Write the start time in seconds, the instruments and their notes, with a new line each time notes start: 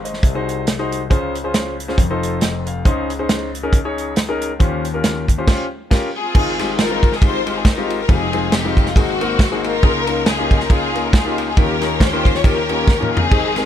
Already playing: grand piano G#1 G#2
0.04 grand piano C5 D#5, closed hi-hat
0.14 snare
0.23 grand piano C2 C3, kick, closed hi-hat
0.35 grand piano D#4 F#4 G#4 C5
0.49 closed hi-hat
0.67 snare, closed hi-hat
0.79 grand piano D#4 F#4 G#4 C5
0.92 closed hi-hat
1.10 grand piano C#2 C#3 C#4 F4 G#4 C5, kick, closed hi-hat
1.35 closed hi-hat
1.44 grand piano C#4 F4 G#4 C5
1.54 snare, closed hi-hat
1.80 closed hi-hat
1.88 grand piano C#4 F4 G#4 C5, snare
1.98 grand piano F1 F2, kick, closed hi-hat
2.10 grand piano D#4 F4 A4 C5
2.23 closed hi-hat
2.41 grand piano D#5, snare, closed hi-hat
2.67 grand piano F5, closed hi-hat
2.85 grand piano C#2 C#3 C#4 D#4 G#4 C5, kick, closed hi-hat
3.10 closed hi-hat
3.19 grand piano C#4 D#4 G#4 C5
3.29 snare, closed hi-hat
3.55 closed hi-hat
3.63 grand piano C#4 D#4 G#4 A#4
3.73 kick, closed hi-hat
3.85 grand piano C#4 D#4 G#4 C#5
3.98 closed hi-hat
4.16 snare, closed hi-hat
4.28 grand piano C#4 D#4 G#4 A#4
4.42 closed hi-hat
4.59 grand piano D#2 D#3 C#4 F4 G4 C5, kick, closed hi-hat
4.85 closed hi-hat
4.94 grand piano C#4 F4 G4 A#4
5.04 snare, closed hi-hat
5.28 kick, closed hi-hat
5.38 grand piano C#4 F4 G4 C5
5.48 grand piano C#4 F4 G4 C5, kick, snare, crash
5.91 grand piano C#4 F4 G4 A#4, kick, snare, crash
6.16 string section C4 F4 G#4
6.35 grand piano G#1 G#2 G#3 C4 D#4 F4 G#4, kick, crash
6.59 grand piano G#3 C4 D#4 F4 G4, snare, ride
6.78 string section D#4 F4 A#4, snare, ride
6.90 grand piano G#3 C4 D#4 F4 A#4
7.03 kick, ride
7.12 string section G#4, snare
7.22 grand piano G#3 C4 D#4 F4 G4, string section D#4 F4 C5, kick, ride
7.46 grand piano G#3 C4 D#4 F4 G4, ride
7.57 string section G#4
7.65 string section D#4 F4 A#4, kick, snare, ride
7.78 grand piano G#3 C4 D#4 F4 G4
7.90 ride
8.01 string section A#4
8.08 grand piano F1 F2 G#3 C4 D#4 F4 G4, string section C4 D#4 G#4, kick, ride
8.33 grand piano G#3 C4 D#4 F4 G#4, ride
8.52 string section C4 D#4 G4, snare, ride
8.65 grand piano G#3 C4 D#4 F4 G4
8.77 kick, ride
8.86 string section F4, snare
8.96 grand piano G#1 G#2 A#3 C4 D#4 F#4 G#4, string section A#3 C4 F#4, kick, ride
9.21 grand piano A#3 C4 D#4 F#4 A#4, ride
9.39 kick, snare, ride
9.52 grand piano A#3 C4 D#4 F#4 G#4
9.64 string section D#4 F4 A#4, ride
9.83 grand piano C#2 C#3 A#3 C#4 D#4 F4 G#4, kick, ride
10.07 grand piano A#3 C#4 D#4 F4 A#4, ride
10.26 string section D#4 F4 G#4, snare, ride
10.39 grand piano A#3 C#4 D#4 F4 G4
10.51 kick, ride
10.60 string section A#4, snare
10.70 grand piano A#3 C#4 D#4 F4 G#4, string section D#4 F4 G#4, kick, ride
10.95 grand piano A#3 C#4 D#4 F4 A#4, ride
11.06 string section A#4
11.13 string section D#4 F4 G#4, kick, snare, ride
11.26 grand piano A#3 C#4 D#4 F4 G4
11.38 ride
11.49 string section G#4
11.57 grand piano D#2 D#3 A#3 C#4 D#4 F4 G4, string section C#4 G4 A#4, kick, ride
11.81 grand piano A#3 C#4 D#4 F4 G4, snare, ride
12.00 string section F4 G4 C5, kick, snare, ride
12.13 grand piano A#3 C#4 D#4 F4 A#4
12.25 kick, ride
12.35 string section C#5, snare
12.44 grand piano A#3 C#4 D#4 F4 G4, string section C#4 G4 A#4, kick, ride
12.69 grand piano A#3 C#4 D#4 F4 G4, ride
12.88 kick, snare
13.00 grand piano A#3 C#4 D#4 F4 A#4, mid tom
13.13 string section C4 D#4 G#4
13.17 floor tom
13.31 grand piano G#1 G#2 G#3 C4 D#4 G4 G#4, kick, crash
13.56 grand piano G#3 C4 D#4 G4 A#4, snare, ride